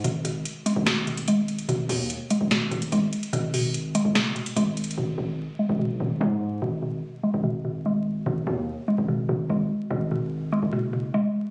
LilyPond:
<<
  \new Staff \with { instrumentName = "Synth pluck" } { \clef bass \time 4/4 \key gis \minor \tempo 4 = 146 <b, gis>8 b,4 gis8 b,8 b,8 gis4 | b,8 b,4 gis8 b,8 b,8 gis4 | b,8 b,4 gis8 b,8 b,8 gis4 | b,8 b,4 gis8 b,8 b,8 gis4 |
b,8 b,4 gis8 b,8 b,8 gis4 | b,8 b,4 gis8 b,8 b,8 gis4 | b,8 b,4 gis8 b,8 b,8 gis4 | }
  \new Staff \with { instrumentName = "808-style bass" } { \clef bass \time 4/4 \key gis \minor gis,,4 r8. gis,,2~ gis,,16 | gis,,8 dis,8. r8 gis,,8. gis,,8 gis,,8 r8 | gis,,4.~ gis,,16 fis,,8. r8 gis,,4 | gis,,8 gis,,8. r8 gis,,8 b,,16 gis,,8 gis,4 |
gis,,4 r8. gis,,2~ gis,,16 | gis,,8 dis,8. r8 gis,,8. gis,,8 gis,,8 r8 | gis,,4.~ gis,,16 fis,,4~ fis,,16 r4 | }
  \new DrumStaff \with { instrumentName = "Drums" } \drummode { \time 4/4 hh8 hh8 hh8 hh8 <hh sn>8 hh16 hh16 hh8 hh16 hh16 | hh8 hho8 hh8 hh8 <hh sn>8 hh16 hh16 hh8 hh16 hh16 | hh8 hho8 hh8 hh8 <hh sn>8 hh16 hh16 \tuplet 3/2 { hh16 r16 r16 hh16 hh16 hh16 } | r4 r4 r4 r4 |
r4 r4 r4 r4 | r4 r4 r4 r4 | r4 r4 r4 r4 | }
>>